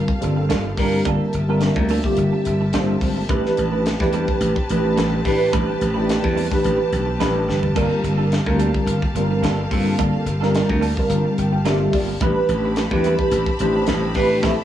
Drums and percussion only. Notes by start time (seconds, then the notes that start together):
0.08 kick
0.22 closed hi-hat
0.50 snare, closed hi-hat
0.77 kick, snare, open hi-hat
1.05 kick, closed hi-hat
1.33 closed hi-hat
1.61 snare, closed hi-hat
1.76 kick
1.89 open hi-hat
2.04 kick
2.17 closed hi-hat
2.45 closed hi-hat
2.73 snare, closed hi-hat
3.01 kick, open hi-hat
3.29 kick, closed hi-hat
3.46 snare
3.57 closed hi-hat
3.86 snare, closed hi-hat
4.00 kick, snare
4.13 closed hi-hat
4.28 kick
4.41 closed hi-hat
4.56 kick
4.69 closed hi-hat
4.97 snare, closed hi-hat
5.25 kick, snare, open hi-hat
5.53 kick, closed hi-hat
5.81 closed hi-hat
6.09 snare, closed hi-hat
6.24 kick
6.38 open hi-hat
6.52 kick, snare
6.64 closed hi-hat
6.93 closed hi-hat
7.20 snare, closed hi-hat
7.49 snare
7.63 floor tom
7.76 kick, closed hi-hat, crash
8.04 closed hi-hat
8.32 snare, closed hi-hat
8.46 kick
8.60 closed hi-hat
8.74 kick
8.87 closed hi-hat
9.02 kick
9.16 closed hi-hat
9.44 snare, closed hi-hat
9.71 kick, open hi-hat
9.99 kick, closed hi-hat
10.26 closed hi-hat
10.43 snare
10.55 snare, closed hi-hat
10.70 kick
10.82 open hi-hat
10.97 kick
11.10 closed hi-hat
11.38 closed hi-hat
11.65 snare, closed hi-hat
11.93 kick, open hi-hat
12.20 kick, closed hi-hat
12.49 closed hi-hat
12.76 snare, closed hi-hat
12.91 kick
13.04 closed hi-hat
13.19 kick
13.31 closed hi-hat
13.46 kick
13.59 closed hi-hat
13.87 snare, closed hi-hat
14.15 kick, snare, open hi-hat
14.43 kick, snare